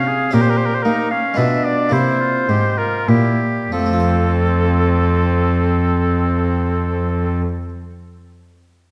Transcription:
0.00 0.30 C3 soft
0.00 0.30 C3 medium
0.00 0.29 C#4 soft
0.00 0.29 F4 soft
0.00 0.35 F5 medium
0.08 0.33 G#4 medium
0.31 0.81 A#2 soft
0.31 0.82 A#2 medium
0.31 1.33 C#4 soft
0.31 1.34 G4 soft
0.31 0.84 G4 medium
0.31 0.43 A#4 medium
0.42 0.52 C5 medium
0.50 0.59 A#4 medium
0.58 0.68 C5 medium
0.66 0.77 A#4 medium
0.75 0.84 C5 medium
0.83 1.34 A#3 soft
0.83 1.35 A#3 medium
0.83 1.13 D#4 medium
0.83 1.10 A#4 medium
1.11 1.39 C#4 medium
1.11 1.39 F5 medium
1.34 1.88 B2 medium
1.34 1.89 G#3 soft
1.34 1.89 B3 soft
1.34 1.94 D4 medium
1.34 1.90 F4 soft
1.34 1.66 E5 medium
1.38 1.88 B2 soft
1.65 1.94 D5 medium
1.89 2.45 C3 medium
1.89 2.45 C3 soft
1.89 3.67 A#3 soft
1.89 3.68 E4 soft
1.89 2.22 E4 medium
1.89 2.80 C5 medium
2.21 2.48 F4 medium
2.48 3.04 G#2 medium
2.48 3.04 G#2 soft
2.48 2.79 G4 medium
2.78 3.10 F4 medium
2.78 3.10 A#4 medium
3.08 3.68 A#2 medium
3.08 3.69 A#2 soft
3.08 3.40 E4 soft
3.08 3.72 G4 medium
3.72 7.41 F2 medium
3.72 7.41 F3 soft
3.72 7.42 C4 medium
3.72 7.42 A4 medium
3.79 7.48 A3 soft
3.86 7.55 C4 soft
3.93 7.62 F4 soft
4.00 7.69 C5 soft

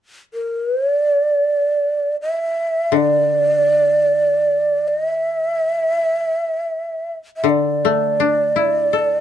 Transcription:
0.34 0.93 A#4 medium
0.93 2.16 D5 medium
2.22 2.98 E5 medium
2.92 6.30 D3 soft
2.97 4.89 D5 medium
4.88 5.07 D#5 medium
5.07 7.14 E5 medium
7.37 7.51 E5 soft
7.44 9.21 D3 soft
7.50 9.21 D5 medium
7.85 9.21 A3 soft
8.20 9.21 D4 soft
8.56 9.21 E4 soft
8.93 9.21 A4 soft

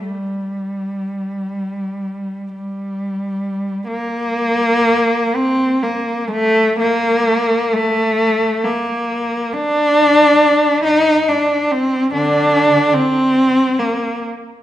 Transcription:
0.02 2.51 G3 medium
2.55 3.82 G3 medium
3.88 5.34 A#3 loud
5.35 5.82 C4 medium
5.83 6.30 A#3 medium
6.31 6.77 A3 loud
6.79 7.70 A#3 medium
7.73 8.65 A3 medium
8.65 9.53 A#3 medium
9.53 10.85 D4 loud
10.84 11.26 D#4 medium
11.29 11.70 D4 medium
11.72 12.12 C4 medium
12.13 12.91 D3 medium
12.13 12.94 D4 medium
12.94 13.80 C4 loud
13.79 14.23 A#3 medium

